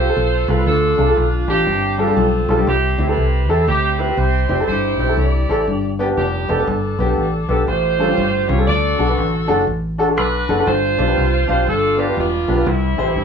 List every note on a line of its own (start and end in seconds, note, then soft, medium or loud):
0.00 0.63 F4 medium
0.00 0.63 A4 medium
0.00 0.48 C5 loud
0.08 0.23 C4 medium
0.08 0.24 F4 medium
0.08 0.24 A4 medium
0.16 0.43 B1 loud
0.48 0.64 C2 loud
0.48 0.55 C4 medium
0.48 0.55 F4 medium
0.48 0.56 A4 medium
0.48 0.67 B4 medium
0.58 0.67 C4 medium
0.58 0.67 F4 medium
0.58 0.67 B4 medium
0.66 0.93 D2 loud
0.66 1.44 D3 medium
0.66 1.48 D4 medium
0.66 1.16 F4 medium
0.66 1.14 A4 medium
0.97 1.14 C2 loud
0.97 1.05 D4 medium
0.97 1.05 F4 medium
0.97 1.05 A4 medium
1.08 1.24 D4 medium
1.08 1.24 F4 medium
1.08 1.24 A4 medium
1.17 1.44 B1 medium
1.17 1.49 F4 medium
1.48 1.64 A1 medium
1.48 2.17 C4 medium
1.48 1.61 D4 medium
1.48 2.45 D4 medium
1.48 1.62 F4 medium
1.48 1.62 G4 medium
1.48 1.95 G4 medium
1.67 2.10 G1 loud
1.67 2.45 G2 medium
1.98 2.05 G3 medium
1.98 2.05 C4 medium
1.98 2.05 D4 medium
1.98 2.06 F4 medium
1.98 2.16 G4 medium
1.98 2.05 A4 medium
2.07 2.24 G3 medium
2.07 2.24 C4 medium
2.07 2.24 D4 medium
2.07 2.24 F4 medium
2.07 2.24 A4 medium
2.17 2.44 B1 loud
2.17 2.64 C4 medium
2.17 2.64 F4 medium
2.17 2.68 A4 medium
2.48 2.64 B1 loud
2.48 2.55 G3 medium
2.48 2.56 C4 medium
2.48 2.56 D4 medium
2.48 2.56 F4 medium
2.48 2.56 A4 medium
2.57 2.67 G3 medium
2.57 2.67 C4 medium
2.57 2.67 D4 medium
2.57 2.67 F4 medium
2.57 2.68 G4 medium
2.67 2.94 C2 loud
2.67 3.45 C3 medium
2.67 3.64 C4 medium
2.67 3.08 E4 medium
2.67 3.06 G4 loud
2.98 3.14 D2 loud
2.98 3.05 C4 medium
2.98 3.05 E4 medium
2.98 3.06 G4 medium
3.08 3.24 C4 medium
3.08 3.24 E4 medium
3.08 3.67 E4 medium
3.08 3.67 G4 medium
3.08 3.25 A4 medium
3.08 3.49 B4 loud
3.17 3.49 C2 loud
3.49 3.65 E2 medium
3.49 3.62 C4 medium
3.49 3.62 E4 medium
3.49 3.63 A4 medium
3.49 3.68 A4 medium
3.67 4.10 D2 loud
3.67 4.64 C4 medium
3.67 4.17 E4 medium
3.67 3.97 G4 loud
3.99 4.06 C4 medium
3.99 4.06 E4 medium
3.99 4.06 G4 medium
3.99 4.18 B4 loud
4.08 4.24 C4 medium
4.08 4.25 E4 medium
4.08 4.25 G4 medium
4.17 4.44 C2 loud
4.17 4.65 E4 medium
4.17 4.65 G4 medium
4.17 4.67 C5 loud
4.49 4.65 F1 loud
4.49 4.56 C4 medium
4.49 4.56 E4 medium
4.49 4.56 G4 medium
4.59 4.68 C4 medium
4.59 4.68 E4 medium
4.59 4.69 A4 medium
4.67 4.99 G1 loud
4.67 5.46 G2 medium
4.67 5.64 E4 medium
4.67 5.17 G4 medium
4.67 4.97 C5 loud
4.99 5.15 B1 loud
4.99 5.06 C4 medium
4.99 5.06 E4 medium
4.99 5.07 G4 medium
4.99 5.17 C5 loud
5.08 5.24 C4 medium
5.08 5.24 E4 medium
5.08 5.25 A4 medium
5.17 5.44 C2 medium
5.17 5.93 G4 medium
5.17 5.94 D5 loud
5.49 5.65 A1 medium
5.49 5.62 C4 medium
5.49 5.63 E4 medium
5.49 5.63 A4 medium
5.67 6.10 G1 loud
5.67 6.45 G2 medium
5.99 6.06 B3 loud
5.99 6.06 D4 medium
5.99 6.06 G4 loud
6.08 6.24 B3 medium
6.08 6.25 D4 medium
6.08 6.25 G4 medium
6.17 6.44 F1 loud
6.17 7.14 B3 medium
6.17 6.66 D4 medium
6.17 6.64 G4 medium
6.49 6.65 F1 loud
6.49 6.56 B3 medium
6.49 6.56 D4 medium
6.49 6.56 A4 medium
6.58 6.74 B3 medium
6.58 6.75 D4 medium
6.58 6.75 A4 medium
6.67 6.94 G1 loud
6.67 7.64 D4 medium
6.67 7.48 A4 medium
6.99 7.15 B1 loud
6.99 7.06 B3 medium
6.99 7.06 D4 medium
6.99 7.06 G4 medium
7.08 7.24 B3 medium
7.08 7.25 D4 medium
7.08 7.25 G4 medium
7.17 7.44 A1 medium
7.49 7.65 B1 medium
7.49 7.62 B3 medium
7.49 7.63 D4 medium
7.49 7.63 G4 medium
7.49 7.67 A4 medium
7.67 8.10 A1 medium
7.67 8.45 A2 medium
7.67 8.64 F4 medium
7.67 8.64 G4 medium
7.67 8.49 C5 loud
7.99 8.05 G3 medium
7.99 8.05 C4 medium
7.99 8.06 C#4 medium
7.99 8.06 F4 medium
7.99 8.06 A4 medium
8.07 8.24 G3 medium
8.07 8.24 C4 medium
8.07 8.24 C#4 medium
8.07 8.24 F4 medium
8.07 8.24 C5 medium
8.17 8.44 G1 loud
8.48 8.65 C2 loud
8.48 8.55 G3 medium
8.48 8.55 C4 medium
8.48 8.55 C#4 medium
8.48 8.55 F4 medium
8.48 8.56 G4 medium
8.48 8.67 C#5 medium
8.58 8.67 G3 medium
8.58 8.67 C4 medium
8.58 8.68 C#4 medium
8.58 8.68 F4 medium
8.58 8.68 A4 medium
8.67 8.94 D2 loud
8.67 9.45 D3 medium
8.67 9.63 F#4 medium
8.67 9.64 A4 medium
8.67 9.14 D5 loud
8.98 9.15 B1 loud
8.98 9.05 D4 medium
8.98 9.05 F#4 medium
8.98 9.06 A4 medium
9.07 9.24 D4 medium
9.07 9.24 F#4 medium
9.07 9.24 B4 medium
9.18 9.44 A1 medium
9.47 9.65 F#1 loud
9.47 9.61 D4 medium
9.47 9.62 F#4 medium
9.47 9.62 A4 loud
9.67 10.17 A1 medium
9.98 10.05 D4 medium
9.98 10.05 F#4 medium
9.98 10.06 A4 loud
10.08 10.24 D4 medium
10.08 10.24 F#4 medium
10.08 10.24 A4 medium
10.17 10.44 B1 loud
10.17 10.64 D4 medium
10.17 10.64 F#4 medium
10.17 10.64 B4 loud
10.49 10.64 F#1 loud
10.49 10.55 D4 medium
10.49 10.56 F#4 medium
10.49 10.56 A4 medium
10.58 10.67 D4 medium
10.58 10.68 F#4 medium
10.58 10.68 A4 medium
10.67 10.94 G1 loud
10.67 11.45 G2 medium
10.67 11.63 F4 medium
10.67 11.49 C5 loud
10.97 11.14 B1 loud
10.97 11.05 C4 medium
10.97 11.05 D4 medium
10.97 11.05 F4 medium
10.97 11.05 G4 medium
10.97 11.05 D5 medium
11.07 11.23 C4 medium
11.07 11.23 D4 medium
11.07 11.24 F4 medium
11.07 11.24 G4 medium
11.07 11.24 B4 medium
11.17 11.44 C2 medium
11.47 11.64 B1 medium
11.47 11.61 C4 medium
11.47 11.61 D4 medium
11.47 11.61 F4 medium
11.47 11.62 G4 medium
11.47 11.66 C5 loud
11.47 11.62 F5 loud
11.67 12.09 G1 loud
11.67 12.44 G2 medium
11.67 12.17 D4 medium
11.67 12.18 F4 medium
11.67 11.97 A4 loud
11.97 12.04 B3 medium
11.97 12.05 D4 medium
11.97 12.05 F4 medium
11.97 12.05 G4 medium
11.97 12.18 G4 medium
11.97 12.05 D5 medium
12.07 12.23 B3 medium
12.07 12.23 D4 medium
12.07 12.24 F4 medium
12.07 12.24 G4 medium
12.07 12.24 B4 medium
12.17 12.43 E1 loud
12.17 12.64 B3 medium
12.17 12.64 D4 medium
12.17 12.68 F4 medium
12.48 12.64 B1 medium
12.48 12.55 B3 medium
12.48 12.55 D4 medium
12.48 12.55 F4 medium
12.48 12.55 G4 medium
12.48 12.55 B4 medium
12.56 12.66 B3 medium
12.56 12.66 D4 medium
12.56 12.66 F4 medium
12.56 12.67 G4 medium
12.56 12.67 B4 medium
12.66 12.93 C2 loud
12.66 13.24 C3 medium
12.66 13.24 G3 medium
12.66 13.24 C4 medium
12.66 13.24 E4 medium
12.97 13.14 A1 medium
12.97 13.04 E4 medium
12.97 13.05 G4 medium
12.97 13.05 C5 medium
13.07 13.23 E4 medium
13.07 13.23 G4 medium
13.07 13.23 C5 medium
13.16 13.24 G1 medium